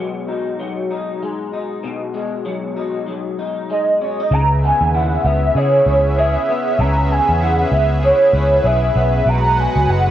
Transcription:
Already playing: B2 F#3 G#3
0.28 D#4
0.60 F#3
0.91 D#4
1.23 G#3
1.53 D#4
1.84 B2
2.14 G#3
2.46 F#3
2.77 D#4
3.07 F#3
3.39 D#4
3.70 G#3 D#5
4.01 C#4 D#5
4.20 D#4
4.31 C#2 C#3 C#4 G#4 B4 E5 A#5
4.63 B3 G#5
4.81 D#2
4.94 E4 F#5
5.24 C#2 B3 E5
5.55 C#3 G#4 C#5
5.86 C#2 E4
6.18 G#4 E5
6.49 B3
6.79 C#2 C#3 A#5
7.10 B3 G#5
7.29 E2
7.41 E4 F#5
7.72 C#2 B3 E5
8.03 G#4 C#5
8.33 C#2 E4
8.64 B1 G#4 E5
8.96 B1 B3
9.26 B1 B2 G#3 F#4 F#5 A#5
9.57 F#3 G#5
9.76 C#2
9.88 F#1 G#3 F#5

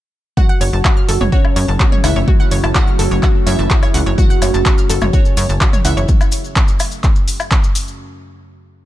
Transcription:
0.37 F#2 C#3 A3 C#4 F#4 F#5, kick, mid tom
0.49 F#5 F#6
0.61 F#1 C#5 C#6, open hi-hat
0.73 F#1 A5 A6
0.85 F#4 F#5, kick, clap, low woodblock
0.97 F6
1.08 F#1 A4 A5, open hi-hat
1.21 F#1 C#5 C#6, mid tom
1.32 C#4 F#4 C#5 F#5, kick
1.45 low woodblock
1.56 F#2 C#5 C#6, open hi-hat
1.68 F#1 A5 A6
1.80 F#4 F#5, kick, clap
1.92 C#5 C#6, mid tom
2.04 C#2 E4 E5 F#5 F#6, open hi-hat, low woodblock
2.16 F#1 C#5 C#6
2.28 F#4 F#5, kick, mid tom
2.40 F#5 F#6
2.51 F#1 C#5 C#6, open hi-hat
2.64 F#1 A5 A6, low woodblock
2.75 F#4 F#5, kick, clap
2.87 F6
2.99 F#1 A4 A5, open hi-hat
3.11 F#1 C#5 C#6
3.23 F#4 F#5, kick, clap, low woodblock
3.46 F#2 E4 C#5 E5 C#6, open hi-hat
3.59 F#1 A5 A6
3.70 F#4 F#5, kick, clap
3.83 C#5 C#6, low woodblock
3.94 C#2 F#5 F#6, open hi-hat
4.06 F#1 C#5 C#6
4.18 F#4 F#5, kick, mid tom, maracas
4.30 F#5 F#6, maracas
4.42 F#1 C#5 C#6, open hi-hat, low woodblock, maracas
4.54 F#1 A5 A6, maracas
4.66 F#4 F#5, kick, clap, maracas
4.78 F6, maracas
4.90 F#1 A4 A5, open hi-hat, maracas
5.01 F#1 C#5 C#6, mid tom, low woodblock, maracas
5.13 C#4 F#4 C#5 F#5, kick, maracas
5.25 maracas
5.37 F#2 C#5 C#6, open hi-hat, maracas
5.49 F#1 A5 A6, maracas
5.61 F#4 F#5, kick, clap, low woodblock, maracas
5.73 C#5 C#6, mid tom, maracas
5.84 C#2 E4 E5 F#5 F#6, open hi-hat, maracas
5.97 F#1 C#5 C#6, maracas
6.09 kick, mid tom, maracas
6.21 low woodblock, maracas
6.32 open hi-hat, maracas
6.44 maracas
6.56 kick, clap, maracas
6.68 maracas
6.79 open hi-hat, low woodblock, maracas
6.91 maracas
7.04 kick, clap, maracas
7.16 maracas
7.28 open hi-hat, maracas
7.40 low woodblock, maracas
7.51 kick, clap, maracas
7.64 maracas
7.75 open hi-hat, maracas
7.88 maracas

